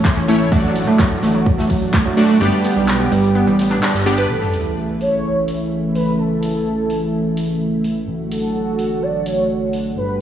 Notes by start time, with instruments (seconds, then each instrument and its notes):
Already playing: analog synth pad C#3 E3 A3 E4, supersaw synth A3 C#4 E4 C#5
0.04 kick, snare, clap, shaker
0.16 analog synth bass A1, synth arpeggio sound C#4, snare
0.28 synth arpeggio sound A3, supersaw synth A3 C#4 E4 C#5, open hi-hat, shaker
0.52 analog synth bass A1, analog synth pad D3 F#3 F#4, synth arpeggio sound A3, supersaw synth A3 D4 F#4 D5, kick, shaker
0.64 synth arpeggio sound F#3
0.75 open hi-hat, shaker
0.87 analog synth bass A2, synth arpeggio sound A3
0.99 synth arpeggio sound F#3, kick, snare, clap, shaker
1.23 analog synth bass A1, synth arpeggio sound A3, snare, open hi-hat, shaker
1.35 synth arpeggio sound F#3
1.46 kick, shaker
1.58 analog synth bass A1, synth arpeggio sound A3, snare, shaker
1.70 synth arpeggio sound F#3, kick, snare, open hi-hat
1.82 shaker
1.94 synth arpeggio sound A3, kick, snare, clap, shaker
2.05 analog synth bass A2, synth arpeggio sound F#3
2.17 supersaw synth A3 D4 F#4 D5, snare, open hi-hat, shaker
2.23 snare, shaker
2.29 synth arpeggio sound A3, snare, shaker
2.35 snare, shaker
2.41 analog synth bass G1, synth arpeggio sound G3, analog synth pad G3 B3 G4, supersaw synth B3 D4 G4 D5, shaker
2.64 synth arpeggio sound B3, snare, open hi-hat, shaker
2.76 analog synth bass B1, synth arpeggio sound G3, snare
2.88 snare, clap, shaker
3.00 synth arpeggio sound B3, snare
3.12 analog synth bass G1, synth arpeggio sound G3, open hi-hat, shaker
3.24 closed hi-hat
3.35 synth arpeggio sound B3
3.47 analog synth bass A1, synth arpeggio sound G3
3.59 snare, open hi-hat, shaker
3.71 synth arpeggio sound D4, snare, clap
3.83 synth arpeggio sound D4, clap, shaker
3.94 analog synth bass G1, snare, shaker
4.06 supersaw synth B3 D4 G4 D5, synth arpeggio sound G4, open hi-hat
4.18 synth arpeggio sound B4, shaker
4.30 analog synth bass A1, analog synth pad C#3 E3 A3 E4, analog synth lead A4, sub drop
4.54 open hi-hat
5.01 analog synth lead C#5, open hi-hat
5.48 open hi-hat
5.95 analog synth lead B4, open hi-hat
6.19 analog synth lead A4
6.43 open hi-hat
6.90 open hi-hat
7.37 open hi-hat
7.84 open hi-hat
8.08 analog synth bass A1, analog synth pad D3 F#3 F#4
8.32 analog synth lead A4, open hi-hat
8.79 open hi-hat
9.02 analog synth lead D5
9.26 analog synth lead C#5, open hi-hat
9.73 open hi-hat
9.97 analog synth bass G1, analog synth pad G3 B3 G4, analog synth lead B4